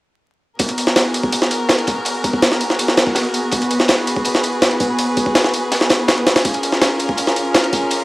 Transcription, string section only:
0.60 6.41 B3 medium
0.60 6.41 F#4 medium
0.60 8.04 G#4 medium
0.60 3.50 A#4 medium
3.52 6.42 B4 medium
6.45 8.04 C#4 medium
6.45 8.04 F4 medium
6.45 8.04 A#4 medium

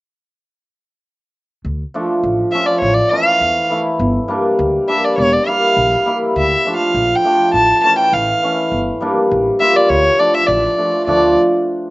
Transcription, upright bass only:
1.65 1.82 D2 medium
2.23 2.41 A1 medium
2.82 3.00 A1 medium
3.41 3.58 E2 medium
3.99 4.17 G1 medium
4.59 4.76 D2 medium
5.18 5.35 E1 medium
5.77 5.94 A#1 medium
6.36 6.53 D2 medium
6.94 7.12 A#1 medium
7.53 7.71 A1 medium
8.12 8.30 A1 medium
8.72 8.89 G1 medium
9.31 9.49 A1 medium
9.90 10.07 D2 medium
10.48 10.66 A1 medium
11.07 11.35 D2 medium

